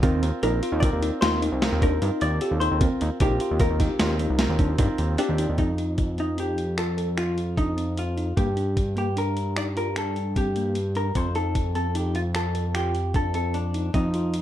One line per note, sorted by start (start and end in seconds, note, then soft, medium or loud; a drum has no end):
0.02 0.21 D#2 loud
0.02 0.38 C4 medium
0.02 0.23 C4 medium
0.02 0.38 F4 medium
0.02 0.39 A#4 medium
0.02 kick loud
0.02 closed hi-hat medium
0.22 0.32 D#2 loud
0.22 closed hi-hat medium
0.42 0.61 A#1 loud
0.42 0.78 C4 medium
0.42 0.53 D#4 medium
0.42 0.78 F4 medium
0.42 0.80 A#4 medium
0.42 0.78 A#4 medium
0.42 closed hi-hat medium
0.63 0.83 F4 medium
0.63 closed hi-hat medium
0.72 0.91 D#2 loud
0.80 1.18 C4 medium
0.80 1.18 F4 medium
0.80 1.18 A#4 medium
0.80 1.18 D5 loud
0.80 kick loud
0.80 closed hi-hat medium
0.93 1.11 D#2 medium
1.03 1.12 D#4 medium
1.03 closed hi-hat medium
1.21 1.50 D#2 medium
1.21 1.57 C4 medium
1.21 1.57 F4 medium
1.21 1.33 F4 medium
1.21 1.58 A#4 medium
1.21 1.40 C5 medium
1.21 snare loud
1.21 closed hi-hat medium
1.42 1.62 D#4 medium
1.42 closed hi-hat medium
1.52 1.70 C2 medium
1.61 1.97 C4 medium
1.61 1.97 F4 medium
1.61 1.97 A#4 medium
1.61 snare loud
1.61 closed hi-hat medium
1.72 1.99 D#2 loud
1.82 1.92 D4 medium
1.82 2.19 A#4 medium
1.82 kick medium
1.82 closed hi-hat medium
2.01 2.11 G2 medium
2.01 2.37 C4 medium
2.01 2.22 D#4 medium
2.01 2.37 F4 medium
2.01 2.37 A#4 medium
2.01 closed hi-hat medium
2.21 2.40 D#2 medium
2.21 2.60 D5 loud
2.21 closed hi-hat medium
2.40 2.76 C4 medium
2.40 2.76 F4 medium
2.40 2.52 G4 medium
2.40 2.76 A4 medium
2.40 closed hi-hat medium
2.51 2.69 D#2 medium
2.60 2.71 D#4 medium
2.60 2.79 C5 medium
2.60 closed hi-hat medium
2.71 2.89 D#2 medium
2.80 3.16 C4 medium
2.80 3.01 C4 medium
2.80 3.16 F4 medium
2.80 3.16 A#4 medium
2.80 kick loud
2.80 closed hi-hat medium
3.01 3.10 D#2 loud
3.01 closed hi-hat medium
3.20 3.39 A#1 medium
3.20 3.55 C4 medium
3.20 3.31 D#4 medium
3.20 3.56 F4 medium
3.20 3.60 G4 medium
3.20 3.56 A#4 medium
3.20 kick loud
3.20 closed hi-hat medium
3.40 3.61 F4 medium
3.40 closed hi-hat medium
3.51 3.69 D#2 medium
3.59 3.95 C4 medium
3.59 3.95 F4 medium
3.59 3.95 A#4 medium
3.59 3.80 A#4 medium
3.59 kick loud
3.59 closed hi-hat medium
3.70 3.88 D#2 medium
3.80 3.90 D#4 medium
3.80 5.19 G4 medium
3.80 kick medium
3.80 snare soft
3.80 closed hi-hat medium
3.99 4.28 D#2 medium
3.99 4.35 C4 medium
3.99 4.35 F4 medium
3.99 4.10 F4 medium
3.99 4.35 A#4 medium
3.99 snare loud
3.99 closed hi-hat medium
4.19 4.39 D#4 medium
4.19 closed hi-hat medium
4.30 4.48 C2 medium
4.39 4.75 C4 medium
4.39 4.75 F4 medium
4.39 4.75 A#4 medium
4.39 snare loud
4.39 closed hi-hat medium
4.49 4.77 D#2 loud
4.59 4.69 D4 medium
4.59 kick medium
4.59 closed hi-hat medium
4.78 4.88 G2 medium
4.78 5.14 C4 medium
4.78 4.99 D#4 medium
4.78 5.14 F4 medium
4.78 5.14 A#4 medium
4.78 kick loud
4.78 closed hi-hat medium
4.98 5.17 D#2 medium
4.98 closed hi-hat medium
5.18 5.54 C4 medium
5.18 5.56 D4 medium
5.18 5.54 F4 medium
5.18 5.29 G4 medium
5.18 5.54 G4 medium
5.18 5.37 G5 medium
5.18 closed hi-hat medium
5.29 5.47 D#2 medium
5.38 5.49 D#4 medium
5.38 5.57 D5 medium
5.38 closed hi-hat medium
5.49 5.58 D#2 medium
5.58 8.33 F2 medium
5.58 5.69 C4 medium
5.58 6.14 D#4 medium
5.58 kick medium
5.58 closed hi-hat medium
5.78 5.99 D#4 medium
5.78 closed hi-hat soft
5.98 kick medium
5.98 closed hi-hat medium
6.18 6.28 C4 medium
6.18 6.40 D#4 medium
6.18 closed hi-hat soft
6.38 6.58 D#4 medium
6.38 6.76 G4 medium
6.38 closed hi-hat medium
6.58 closed hi-hat soft
6.78 6.88 F4 medium
6.78 7.18 A4 medium
6.78 finger snap medium
6.78 closed hi-hat medium
6.97 7.08 A4 medium
6.97 closed hi-hat soft
7.18 7.38 F4 medium
7.18 7.55 F4 medium
7.18 finger snap medium
7.18 closed hi-hat medium
7.38 closed hi-hat soft
7.57 7.68 D4 medium
7.57 7.99 D#4 medium
7.57 kick medium
7.57 closed hi-hat medium
7.77 7.97 C4 medium
7.77 closed hi-hat soft
7.97 8.37 F4 medium
7.97 closed hi-hat medium
8.17 8.27 D#4 medium
8.17 closed hi-hat soft
8.37 11.12 G2 medium
8.37 8.47 A#3 medium
8.37 8.93 G4 medium
8.37 kick medium
8.37 closed hi-hat medium
8.57 8.77 D4 medium
8.57 closed hi-hat soft
8.77 kick medium
8.77 closed hi-hat medium
8.96 9.06 A#3 medium
8.96 9.16 G4 medium
8.96 closed hi-hat soft
9.17 9.37 D4 medium
9.17 9.57 A#4 medium
9.17 closed hi-hat medium
9.37 closed hi-hat soft
9.56 9.67 D#4 medium
9.56 9.63 D5 medium
9.56 finger snap medium
9.56 closed hi-hat medium
9.77 9.87 F4 medium
9.77 9.97 A#4 medium
9.77 closed hi-hat soft
9.96 10.17 D4 medium
9.96 10.38 A4 medium
9.96 finger snap medium
9.96 closed hi-hat medium
10.16 closed hi-hat soft
10.36 10.46 C4 medium
10.36 10.93 G4 medium
10.36 kick medium
10.36 closed hi-hat medium
10.56 10.76 A#3 medium
10.56 closed hi-hat soft
10.75 closed hi-hat medium
10.95 11.06 D4 medium
10.95 11.17 A#4 medium
10.95 closed hi-hat medium
11.15 13.90 F2 medium
11.15 11.26 C4 medium
11.15 11.35 C5 medium
11.15 kick medium
11.15 closed hi-hat medium
11.35 11.56 D#4 medium
11.35 11.73 A4 medium
11.35 closed hi-hat soft
11.55 kick medium
11.55 closed hi-hat medium
11.75 11.85 C4 medium
11.75 11.96 A4 medium
11.75 closed hi-hat medium
11.95 12.15 D#4 medium
11.95 12.16 G4 medium
11.95 closed hi-hat medium
12.15 12.21 F4 medium
12.15 closed hi-hat soft
12.35 12.45 F4 medium
12.35 12.73 A4 medium
12.35 finger snap medium
12.35 closed hi-hat medium
12.55 12.65 A4 medium
12.55 closed hi-hat soft
12.75 12.95 F4 medium
12.75 13.12 G4 medium
12.75 finger snap medium
12.75 closed hi-hat medium
12.95 closed hi-hat soft
13.14 13.25 D4 medium
13.14 13.34 A4 medium
13.14 kick medium
13.14 closed hi-hat medium
13.34 13.55 C4 medium
13.34 13.55 A4 medium
13.34 closed hi-hat medium
13.54 13.94 D4 medium
13.54 closed hi-hat medium
13.74 13.84 D#4 medium
13.74 closed hi-hat soft
13.94 14.42 F2 medium
13.94 14.05 C4 medium
13.94 14.42 D#4 medium
13.94 kick medium
13.94 closed hi-hat medium
14.14 14.35 F4 medium
14.14 closed hi-hat soft
14.34 closed hi-hat medium